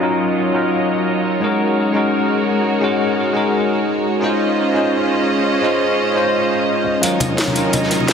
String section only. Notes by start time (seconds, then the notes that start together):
Already playing: F#3 F4 C#5 D#5
1.42 G#3 F#4 A#4
4.23 C#4 F4 C5 D#5
7.03 D#3 D#4 C#5 D#5